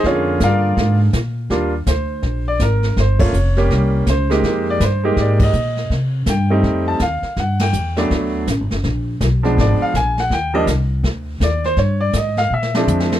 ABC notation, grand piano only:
X:1
M:4/4
L:1/16
Q:"Swing" 1/4=164
K:Eb
V:1 name="Grand piano"
[_D_d]4 [FB=df]6 z6 | z4 c6 d2 B4 | c2 _d6 z4 c4- | c2 d2 [_c=c]4 d2 e6 |
z4 g6 =a2 f4 | ^f2 g6 z8 | z8 d2 f2 a2 _g2 | g2 e2 z8 d2 c2 |
_d2 =d2 e2 f2 _f6- f z |]
V:2 name="Grand piano"
[D,B,FA]8- [D,B,FA]2 z6 | [G,B,DF]2 z12 z2 | z2 [=A,B,_DF]2 z2 [G,B,DG]6 z2 [_A,B,EG]2- | [A,B,EG]4 z2 [A,B,EG]6 z4 |
z6 [G,=A,CE]6 z4 | z6 [^F,=A,=B,D]6 z4 | z6 [F,A,_CD]6 z4 | z2 [F,G,B,D]2 z12 |
z8 z2 [F,A,CD]6 |]